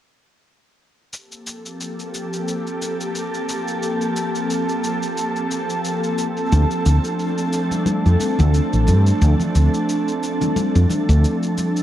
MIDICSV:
0, 0, Header, 1, 5, 480
1, 0, Start_track
1, 0, Key_signature, -2, "minor"
1, 0, Tempo, 674157
1, 802, Time_signature, 4, 2, 24, 8
1, 8422, End_track
2, 0, Start_track
2, 0, Title_t, "Synth texture"
2, 0, Program_c, 0, 99
2, 806, Note_on_c, 0, 81, 77
2, 8422, Note_off_c, 0, 81, 0
2, 8422, End_track
3, 0, Start_track
3, 0, Title_t, "Ambient pad"
3, 0, Program_c, 1, 92
3, 798, Note_on_c, 1, 53, 73
3, 798, Note_on_c, 1, 67, 65
3, 799, Note_on_c, 1, 58, 66
3, 800, Note_on_c, 1, 69, 84
3, 801, Note_on_c, 1, 60, 69
3, 4612, Note_off_c, 1, 58, 0
3, 4612, Note_off_c, 1, 67, 0
3, 4639, Note_on_c, 1, 57, 70
3, 4640, Note_on_c, 1, 62, 69
3, 8422, Note_off_c, 1, 53, 0
3, 8422, Note_off_c, 1, 57, 0
3, 8422, Note_off_c, 1, 60, 0
3, 8422, Note_off_c, 1, 62, 0
3, 8422, Note_off_c, 1, 69, 0
3, 8422, End_track
4, 0, Start_track
4, 0, Title_t, "Fretless electric bass"
4, 0, Program_c, 2, 35
4, 4643, Note_on_c, 2, 38, 88
4, 4727, Note_off_c, 2, 38, 0
4, 4884, Note_on_c, 2, 38, 78
4, 4967, Note_off_c, 2, 38, 0
4, 5736, Note_on_c, 2, 41, 73
4, 5803, Note_off_c, 2, 41, 0
4, 5978, Note_on_c, 2, 38, 100
4, 6117, Note_off_c, 2, 38, 0
4, 6216, Note_on_c, 2, 33, 68
4, 6323, Note_on_c, 2, 43, 81
4, 6334, Note_off_c, 2, 33, 0
4, 6483, Note_off_c, 2, 43, 0
4, 6563, Note_on_c, 2, 38, 98
4, 6646, Note_off_c, 2, 38, 0
4, 6802, Note_on_c, 2, 38, 79
4, 6886, Note_off_c, 2, 38, 0
4, 7656, Note_on_c, 2, 41, 81
4, 7722, Note_off_c, 2, 41, 0
4, 7894, Note_on_c, 2, 38, 103
4, 8001, Note_off_c, 2, 38, 0
4, 8422, End_track
5, 0, Start_track
5, 0, Title_t, "Drums"
5, 806, Note_on_c, 9, 82, 37
5, 877, Note_off_c, 9, 82, 0
5, 939, Note_on_c, 9, 82, 19
5, 1011, Note_off_c, 9, 82, 0
5, 1046, Note_on_c, 9, 82, 70
5, 1117, Note_off_c, 9, 82, 0
5, 1180, Note_on_c, 9, 82, 26
5, 1251, Note_off_c, 9, 82, 0
5, 1287, Note_on_c, 9, 82, 40
5, 1358, Note_off_c, 9, 82, 0
5, 1420, Note_on_c, 9, 82, 21
5, 1491, Note_off_c, 9, 82, 0
5, 1525, Note_on_c, 9, 82, 66
5, 1597, Note_off_c, 9, 82, 0
5, 1660, Note_on_c, 9, 82, 29
5, 1732, Note_off_c, 9, 82, 0
5, 1766, Note_on_c, 9, 82, 38
5, 1837, Note_off_c, 9, 82, 0
5, 1900, Note_on_c, 9, 82, 18
5, 1971, Note_off_c, 9, 82, 0
5, 2006, Note_on_c, 9, 82, 59
5, 2077, Note_off_c, 9, 82, 0
5, 2140, Note_on_c, 9, 82, 30
5, 2211, Note_off_c, 9, 82, 0
5, 2244, Note_on_c, 9, 82, 38
5, 2315, Note_off_c, 9, 82, 0
5, 2380, Note_on_c, 9, 82, 20
5, 2451, Note_off_c, 9, 82, 0
5, 2485, Note_on_c, 9, 82, 70
5, 2556, Note_off_c, 9, 82, 0
5, 2620, Note_on_c, 9, 82, 29
5, 2691, Note_off_c, 9, 82, 0
5, 2725, Note_on_c, 9, 82, 37
5, 2796, Note_off_c, 9, 82, 0
5, 2858, Note_on_c, 9, 82, 19
5, 2929, Note_off_c, 9, 82, 0
5, 2964, Note_on_c, 9, 82, 71
5, 3035, Note_off_c, 9, 82, 0
5, 3099, Note_on_c, 9, 82, 29
5, 3170, Note_off_c, 9, 82, 0
5, 3205, Note_on_c, 9, 82, 40
5, 3276, Note_off_c, 9, 82, 0
5, 3339, Note_on_c, 9, 82, 22
5, 3410, Note_off_c, 9, 82, 0
5, 3445, Note_on_c, 9, 82, 67
5, 3516, Note_off_c, 9, 82, 0
5, 3578, Note_on_c, 9, 82, 29
5, 3649, Note_off_c, 9, 82, 0
5, 3684, Note_on_c, 9, 82, 40
5, 3756, Note_off_c, 9, 82, 0
5, 3818, Note_on_c, 9, 82, 19
5, 3889, Note_off_c, 9, 82, 0
5, 3924, Note_on_c, 9, 82, 68
5, 3995, Note_off_c, 9, 82, 0
5, 4057, Note_on_c, 9, 82, 29
5, 4128, Note_off_c, 9, 82, 0
5, 4164, Note_on_c, 9, 82, 39
5, 4235, Note_off_c, 9, 82, 0
5, 4298, Note_on_c, 9, 82, 20
5, 4370, Note_off_c, 9, 82, 0
5, 4402, Note_on_c, 9, 82, 73
5, 4473, Note_off_c, 9, 82, 0
5, 4536, Note_on_c, 9, 82, 30
5, 4607, Note_off_c, 9, 82, 0
5, 4643, Note_on_c, 9, 82, 40
5, 4715, Note_off_c, 9, 82, 0
5, 4776, Note_on_c, 9, 82, 20
5, 4847, Note_off_c, 9, 82, 0
5, 4883, Note_on_c, 9, 82, 77
5, 4954, Note_off_c, 9, 82, 0
5, 5016, Note_on_c, 9, 82, 31
5, 5088, Note_off_c, 9, 82, 0
5, 5123, Note_on_c, 9, 82, 42
5, 5194, Note_off_c, 9, 82, 0
5, 5255, Note_on_c, 9, 82, 22
5, 5327, Note_off_c, 9, 82, 0
5, 5361, Note_on_c, 9, 82, 75
5, 5432, Note_off_c, 9, 82, 0
5, 5492, Note_on_c, 9, 63, 57
5, 5495, Note_on_c, 9, 82, 33
5, 5563, Note_off_c, 9, 63, 0
5, 5567, Note_off_c, 9, 82, 0
5, 5596, Note_on_c, 9, 63, 94
5, 5601, Note_on_c, 9, 82, 38
5, 5667, Note_off_c, 9, 63, 0
5, 5673, Note_off_c, 9, 82, 0
5, 5737, Note_on_c, 9, 82, 20
5, 5808, Note_off_c, 9, 82, 0
5, 5835, Note_on_c, 9, 63, 58
5, 5841, Note_on_c, 9, 82, 72
5, 5906, Note_off_c, 9, 63, 0
5, 5912, Note_off_c, 9, 82, 0
5, 5971, Note_on_c, 9, 64, 87
5, 5977, Note_on_c, 9, 82, 30
5, 6043, Note_off_c, 9, 64, 0
5, 6048, Note_off_c, 9, 82, 0
5, 6082, Note_on_c, 9, 82, 42
5, 6153, Note_off_c, 9, 82, 0
5, 6217, Note_on_c, 9, 82, 22
5, 6288, Note_off_c, 9, 82, 0
5, 6314, Note_on_c, 9, 63, 60
5, 6321, Note_on_c, 9, 64, 73
5, 6321, Note_on_c, 9, 82, 73
5, 6385, Note_off_c, 9, 63, 0
5, 6392, Note_off_c, 9, 64, 0
5, 6392, Note_off_c, 9, 82, 0
5, 6456, Note_on_c, 9, 82, 31
5, 6527, Note_off_c, 9, 82, 0
5, 6564, Note_on_c, 9, 82, 42
5, 6635, Note_off_c, 9, 82, 0
5, 6692, Note_on_c, 9, 64, 72
5, 6698, Note_on_c, 9, 82, 20
5, 6763, Note_off_c, 9, 64, 0
5, 6769, Note_off_c, 9, 82, 0
5, 6803, Note_on_c, 9, 82, 72
5, 6874, Note_off_c, 9, 82, 0
5, 6937, Note_on_c, 9, 82, 29
5, 7008, Note_off_c, 9, 82, 0
5, 7044, Note_on_c, 9, 82, 42
5, 7116, Note_off_c, 9, 82, 0
5, 7179, Note_on_c, 9, 82, 21
5, 7250, Note_off_c, 9, 82, 0
5, 7284, Note_on_c, 9, 82, 74
5, 7355, Note_off_c, 9, 82, 0
5, 7411, Note_on_c, 9, 63, 53
5, 7415, Note_on_c, 9, 64, 80
5, 7416, Note_on_c, 9, 82, 33
5, 7482, Note_off_c, 9, 63, 0
5, 7486, Note_off_c, 9, 64, 0
5, 7487, Note_off_c, 9, 82, 0
5, 7519, Note_on_c, 9, 63, 93
5, 7522, Note_on_c, 9, 82, 39
5, 7590, Note_off_c, 9, 63, 0
5, 7594, Note_off_c, 9, 82, 0
5, 7657, Note_on_c, 9, 82, 21
5, 7728, Note_off_c, 9, 82, 0
5, 7756, Note_on_c, 9, 63, 61
5, 7758, Note_on_c, 9, 64, 65
5, 7763, Note_on_c, 9, 82, 70
5, 7828, Note_off_c, 9, 63, 0
5, 7829, Note_off_c, 9, 64, 0
5, 7834, Note_off_c, 9, 82, 0
5, 7898, Note_on_c, 9, 82, 34
5, 7969, Note_off_c, 9, 82, 0
5, 8005, Note_on_c, 9, 82, 43
5, 8076, Note_off_c, 9, 82, 0
5, 8138, Note_on_c, 9, 82, 23
5, 8209, Note_off_c, 9, 82, 0
5, 8243, Note_on_c, 9, 82, 80
5, 8244, Note_on_c, 9, 63, 55
5, 8314, Note_off_c, 9, 82, 0
5, 8315, Note_off_c, 9, 63, 0
5, 8377, Note_on_c, 9, 82, 32
5, 8422, Note_off_c, 9, 82, 0
5, 8422, End_track
0, 0, End_of_file